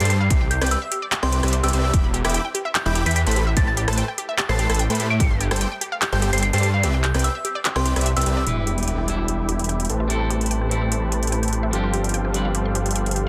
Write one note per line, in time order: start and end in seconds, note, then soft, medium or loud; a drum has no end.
0.00 0.29 G2 loud
0.00 0.17 G3 medium
0.00 0.17 G4 medium
0.00 0.17 A4 medium
0.00 0.17 C5 medium
0.00 0.10 G5 medium
0.00 0.17 A5 medium
0.00 closed hi-hat soft
0.05 closed hi-hat medium
0.10 0.20 G4 medium
0.10 0.26 C7 medium
0.10 closed hi-hat medium
0.21 0.27 F5 loud
0.30 0.59 C2 loud
0.30 0.42 C4 medium
0.30 0.34 G4 medium
0.30 0.42 G4 medium
0.30 0.42 B4 medium
0.30 0.42 D5 medium
0.30 0.42 E5 loud
0.30 kick loud
0.30 closed hi-hat medium
0.41 0.45 G5 medium
0.51 0.58 G4 loud
0.51 0.67 G6 medium
0.51 closed hi-hat medium
0.61 0.76 C2 loud
0.61 0.78 C4 medium
0.61 0.78 G4 medium
0.61 0.70 B4 medium
0.61 0.78 B4 medium
0.61 0.78 D5 medium
0.61 0.78 G5 medium
0.61 cross-stick medium
0.61 closed hi-hat soft
0.66 closed hi-hat medium
0.71 0.81 B4 medium
0.71 0.88 E6 medium
0.71 closed hi-hat medium
0.82 0.91 E5 medium
0.92 1.02 G4 medium
0.92 closed hi-hat medium
1.02 1.09 D5 loud
1.12 1.16 G4 medium
1.12 clap loud
1.12 closed hi-hat medium
1.23 1.41 C2 medium
1.23 1.41 C4 loud
1.23 1.41 G4 medium
1.23 1.41 B4 medium
1.23 1.41 D5 medium
1.23 1.27 G5 medium
1.23 1.41 G5 loud
1.23 1.29 C6 medium
1.23 cross-stick medium
1.32 1.39 B4 medium
1.32 1.39 C6 medium
1.32 closed hi-hat medium
1.43 1.61 C2 loud
1.43 1.53 C4 medium
1.43 1.53 G4 medium
1.43 1.49 B4 medium
1.43 1.53 B4 medium
1.43 1.53 D5 medium
1.43 1.53 E5 loud
1.43 cross-stick medium
1.43 closed hi-hat soft
1.48 closed hi-hat medium
1.53 1.60 C5 medium
1.53 closed hi-hat medium
1.63 1.71 C2 loud
1.63 1.71 C4 medium
1.63 1.70 G4 medium
1.63 1.71 G4 medium
1.63 1.71 B4 medium
1.63 1.71 D5 medium
1.63 1.71 G5 medium
1.63 1.98 E6 loud
1.63 closed hi-hat soft
1.68 closed hi-hat medium
1.73 1.92 C2 loud
1.73 1.91 C4 medium
1.73 1.91 G4 medium
1.73 1.91 B4 medium
1.73 1.80 C5 loud
1.73 1.91 D5 medium
1.73 1.91 E5 medium
1.73 closed hi-hat medium
1.84 1.90 G5 medium
1.93 2.23 E1 loud
1.93 2.05 E4 medium
1.93 1.98 G4 medium
1.93 2.05 G5 medium
1.93 2.05 D6 loud
1.93 kick loud
1.93 closed hi-hat medium
2.04 2.08 B5 medium
2.14 2.21 G4 loud
2.14 closed hi-hat medium
2.24 2.39 E1 loud
2.24 2.41 E4 medium
2.24 2.34 B4 medium
2.24 2.41 E5 medium
2.24 2.41 G5 medium
2.24 2.41 B5 medium
2.24 2.41 D6 medium
2.24 cross-stick medium
2.24 closed hi-hat soft
2.30 closed hi-hat medium
2.34 2.41 G5 loud
2.34 closed hi-hat medium
2.45 2.54 G5 medium
2.54 2.65 G4 medium
2.54 closed hi-hat medium
2.65 2.72 E5 loud
2.75 2.79 G4 medium
2.75 2.82 G6 medium
2.75 clap loud
2.75 closed hi-hat medium
2.85 3.04 E1 medium
2.85 3.04 E4 loud
2.85 3.04 E5 medium
2.85 3.04 G5 medium
2.85 2.90 B5 medium
2.85 3.04 B5 medium
2.85 3.04 D6 loud
2.85 2.92 G6 medium
2.95 3.02 G4 loud
2.95 closed hi-hat medium
3.06 3.24 E2 loud
3.06 3.16 E4 medium
3.06 3.15 B4 medium
3.06 3.16 E5 medium
3.06 3.16 G5 medium
3.06 3.16 B5 medium
3.06 3.16 D6 medium
3.06 3.14 B6 medium
3.06 closed hi-hat soft
3.11 closed hi-hat medium
3.16 3.23 G5 loud
3.16 3.32 B6 medium
3.16 closed hi-hat medium
3.26 3.55 A1 loud
3.26 3.43 A3 medium
3.26 3.43 A4 medium
3.26 3.44 B4 medium
3.26 3.43 C5 medium
3.26 3.36 G5 medium
3.26 3.43 B5 medium
3.26 closed hi-hat soft
3.31 closed hi-hat medium
3.36 3.47 G4 medium
3.36 closed hi-hat medium
3.47 3.53 E5 loud
3.57 3.86 A1 medium
3.57 3.68 A3 medium
3.57 3.61 G4 medium
3.57 3.68 A4 medium
3.57 3.68 B4 medium
3.57 3.68 C5 medium
3.57 3.68 G5 loud
3.57 3.64 A6 medium
3.57 kick loud
3.57 closed hi-hat medium
3.67 3.71 A5 medium
3.67 3.74 A6 medium
3.77 3.84 G4 loud
3.77 closed hi-hat medium
3.88 4.02 A1 loud
3.88 4.05 A3 medium
3.88 3.97 A4 medium
3.88 4.05 A4 medium
3.88 4.05 B4 medium
3.88 4.05 C5 medium
3.88 4.05 A5 medium
3.88 cross-stick medium
3.88 closed hi-hat soft
3.93 closed hi-hat medium
3.97 4.05 G5 loud
3.97 closed hi-hat medium
4.08 4.18 G5 medium
4.18 4.28 G4 medium
4.18 closed hi-hat medium
4.29 4.35 E5 loud
4.38 4.43 G4 medium
4.38 4.47 A6 medium
4.38 clap loud
4.38 closed hi-hat medium
4.49 4.67 A1 medium
4.49 4.67 A3 loud
4.49 4.67 A4 medium
4.49 4.67 B4 medium
4.49 4.67 C5 medium
4.49 4.67 A5 loud
4.49 4.53 A5 medium
4.49 4.65 C7 medium
4.49 cross-stick medium
4.59 4.66 G4 loud
4.59 closed hi-hat medium
4.70 4.88 A1 loud
4.70 4.80 A3 medium
4.70 4.80 A4 medium
4.70 4.79 A4 medium
4.70 4.80 B4 medium
4.70 4.80 C5 medium
4.70 4.80 A5 medium
4.70 cross-stick medium
4.70 closed hi-hat medium
4.74 closed hi-hat medium
4.79 4.86 G5 loud
4.79 closed hi-hat medium
4.90 5.22 A2 loud
4.90 5.07 A3 medium
4.90 5.07 A4 medium
4.90 5.07 B4 medium
4.90 5.07 C5 medium
4.90 4.99 G5 medium
4.90 5.07 B5 medium
4.90 closed hi-hat soft
4.95 closed hi-hat medium
5.00 5.10 G4 medium
5.00 closed hi-hat medium
5.10 5.17 E5 loud
5.10 5.24 D7 loud
5.20 5.49 G1 medium
5.20 5.31 G3 medium
5.20 5.31 G4 medium
5.20 5.24 G4 medium
5.20 5.31 A4 medium
5.20 5.31 C5 medium
5.20 5.31 F5 loud
5.20 kick loud
5.20 closed hi-hat medium
5.31 5.35 C6 medium
5.40 5.47 G4 loud
5.40 closed hi-hat medium
5.51 5.66 G1 loud
5.51 5.68 G3 medium
5.51 5.68 G4 medium
5.51 5.68 A4 medium
5.51 5.60 C5 medium
5.51 5.68 C5 medium
5.51 5.68 G5 medium
5.51 cross-stick medium
5.51 closed hi-hat medium
5.56 closed hi-hat medium
5.61 5.68 G5 loud
5.61 closed hi-hat medium
5.72 5.81 G5 medium
5.81 5.91 G4 medium
5.81 closed hi-hat medium
5.92 5.98 F5 loud
6.02 6.06 G4 medium
6.02 6.09 G6 medium
6.02 clap loud
6.02 closed hi-hat medium
6.12 6.31 G1 loud
6.12 6.30 G3 loud
6.12 6.30 G4 medium
6.12 6.30 A4 medium
6.12 6.30 C5 medium
6.12 6.30 G5 loud
6.12 6.16 C6 medium
6.12 6.19 G6 medium
6.22 6.29 G4 loud
6.22 closed hi-hat medium
6.33 6.51 G1 loud
6.33 6.43 G3 medium
6.33 6.43 G4 medium
6.33 6.43 A4 medium
6.33 6.42 C5 medium
6.33 6.43 C5 medium
6.33 6.43 G5 medium
6.33 6.41 C7 medium
6.33 closed hi-hat medium
6.38 closed hi-hat medium
6.42 6.49 G5 loud
6.42 6.59 C7 loud
6.42 closed hi-hat medium
6.53 6.85 G2 loud
6.53 6.70 G3 medium
6.53 6.70 G4 medium
6.53 6.70 A4 medium
6.53 6.70 C5 medium
6.53 6.63 G5 medium
6.53 6.70 A5 medium
6.53 closed hi-hat medium
6.58 closed hi-hat medium
6.63 6.73 G4 medium
6.63 6.79 C7 medium
6.63 closed hi-hat medium
6.74 6.80 F5 loud
6.83 7.12 C2 loud
6.83 6.94 C4 medium
6.83 6.88 G4 medium
6.83 6.94 G4 medium
6.83 6.94 B4 medium
6.83 6.94 D5 medium
6.83 6.94 E5 loud
6.83 closed hi-hat medium
6.94 6.98 G5 medium
7.04 7.11 G4 loud
7.04 7.20 G6 medium
7.04 clap medium
7.04 closed hi-hat medium
7.14 7.29 C2 loud
7.14 7.31 C4 medium
7.14 7.31 G4 medium
7.14 7.24 B4 medium
7.14 7.31 B4 medium
7.14 7.31 D5 medium
7.14 7.31 G5 medium
7.14 cross-stick medium
7.14 closed hi-hat medium
7.19 closed hi-hat medium
7.24 7.31 E5 loud
7.24 7.41 E6 loud
7.24 closed hi-hat medium
7.35 7.44 E5 medium
7.45 7.55 G4 medium
7.45 closed hi-hat medium
7.55 7.62 D5 loud
7.65 7.69 G4 medium
7.65 clap loud
7.65 closed hi-hat medium
7.76 7.94 C2 loud
7.76 7.94 C4 loud
7.76 7.94 G4 medium
7.76 7.94 B4 medium
7.76 7.94 D5 medium
7.76 7.79 G5 medium
7.76 7.94 G5 loud
7.76 7.82 C6 medium
7.76 cross-stick medium
7.85 7.92 G4 loud
7.85 7.92 C6 medium
7.85 closed hi-hat medium
7.96 8.14 C2 loud
7.96 8.06 C4 medium
7.96 8.06 G4 medium
7.96 8.05 B4 medium
7.96 8.06 B4 medium
7.96 8.06 D5 medium
7.96 8.06 E5 loud
7.96 cross-stick medium
7.96 closed hi-hat medium
8.01 closed hi-hat medium
8.06 8.13 E5 loud
8.06 closed hi-hat medium
8.16 8.24 C2 loud
8.16 8.24 C4 medium
8.16 8.24 G4 medium
8.16 8.24 B4 medium
8.16 8.24 D5 medium
8.16 8.26 E5 medium
8.16 8.24 G5 medium
8.16 8.47 E6 medium
8.16 closed hi-hat medium
8.21 closed hi-hat medium
8.26 8.45 C2 loud
8.26 8.44 C4 medium
8.26 8.36 G4 medium
8.26 8.44 G4 medium
8.26 8.44 B4 medium
8.26 8.44 D5 medium
8.26 8.44 E5 medium
8.26 closed hi-hat medium
8.37 8.43 D5 loud
8.44 9.88 E1 medium
8.44 9.04 G3 medium
8.44 9.05 D4 medium
8.44 9.87 E4 medium
8.44 9.06 E4 medium
8.44 8.51 G4 medium
8.44 9.06 B4 medium
8.44 9.87 E5 medium
8.44 9.87 G5 medium
8.44 9.87 B5 medium
8.44 closed hi-hat medium
8.44 sub drop medium
8.57 8.61 B5 medium
8.67 8.74 G4 loud
8.67 closed hi-hat medium
8.78 8.87 B4 medium
8.78 closed hi-hat soft
8.83 closed hi-hat medium
8.87 8.94 G5 loud
8.87 closed hi-hat medium
8.98 9.07 G5 medium
9.06 9.87 G3 medium
9.06 9.88 D4 medium
9.06 9.89 E4 medium
9.06 9.18 G4 medium
9.06 9.89 E5 medium
9.06 closed hi-hat medium
9.18 9.25 E5 loud
9.28 9.32 G4 medium
9.28 closed hi-hat medium
9.39 9.43 B5 medium
9.49 9.56 G4 loud
9.49 closed hi-hat medium
9.59 9.69 B4 medium
9.59 closed hi-hat soft
9.64 closed hi-hat medium
9.69 9.76 G5 loud
9.69 closed hi-hat medium
9.80 9.89 G5 medium
9.80 closed hi-hat soft
9.85 closed hi-hat medium
9.89 11.71 A1 medium
9.89 11.71 A3 medium
9.89 10.00 G4 medium
9.89 11.71 G4 medium
9.89 11.71 B4 medium
9.89 11.71 C5 medium
9.89 11.71 A5 medium
9.89 closed hi-hat medium
10.00 10.07 E5 loud
10.08 10.68 G3 medium
10.08 10.68 C4 medium
10.08 10.69 E4 medium
10.08 10.14 G4 medium
10.08 closed hi-hat medium
10.12 10.70 A4 medium
10.21 10.24 A5 medium
10.30 10.37 G4 medium
10.30 closed hi-hat medium
10.41 10.50 A4 medium
10.41 closed hi-hat soft
10.46 closed hi-hat medium
10.51 10.58 G5 loud
10.51 closed hi-hat medium
10.61 10.71 G5 medium
10.69 11.70 G3 medium
10.69 11.71 C4 medium
10.69 11.71 E4 medium
10.69 10.81 G4 medium
10.69 closed hi-hat medium
10.82 10.88 E5 loud
10.91 10.96 G4 medium
10.91 closed hi-hat medium
11.02 11.06 A5 medium
11.12 11.19 G4 loud
11.12 closed hi-hat medium
11.22 11.32 A4 medium
11.22 closed hi-hat soft
11.27 closed hi-hat medium
11.32 11.39 G5 medium
11.32 closed hi-hat medium
11.43 11.52 G5 medium
11.43 closed hi-hat soft
11.48 closed hi-hat medium
11.53 11.63 G4 medium
11.53 closed hi-hat medium
11.63 11.70 E5 loud
11.71 13.29 G1 medium
11.71 12.31 F3 medium
11.71 13.29 G3 medium
11.71 12.32 C4 medium
11.71 12.32 D4 medium
11.71 11.77 G4 medium
11.71 13.29 G4 medium
11.71 13.29 A4 medium
11.71 13.29 C5 medium
11.71 13.29 F5 medium
11.71 closed hi-hat medium
11.75 12.33 G4 medium
11.84 11.88 C6 medium
11.93 12.00 G4 medium
11.93 closed hi-hat medium
12.04 12.13 C5 medium
12.04 closed hi-hat soft
12.09 closed hi-hat medium
12.14 12.21 G5 loud
12.14 closed hi-hat medium
12.25 12.34 G5 medium
12.32 13.29 F3 medium
12.32 13.29 C4 medium
12.32 13.29 D4 medium
12.32 12.45 G4 medium
12.32 closed hi-hat medium
12.36 13.29 B5 medium
12.45 12.51 F5 loud
12.55 12.59 G4 medium
12.55 closed hi-hat medium
12.65 12.69 C6 medium
12.75 12.82 G4 loud
12.75 closed hi-hat medium
12.86 12.95 C5 medium
12.86 closed hi-hat soft
12.91 closed hi-hat medium
12.96 13.03 G5 medium
12.96 closed hi-hat medium
13.06 13.16 G5 medium
13.06 closed hi-hat soft
13.11 closed hi-hat medium
13.16 13.26 G4 medium
13.16 closed hi-hat medium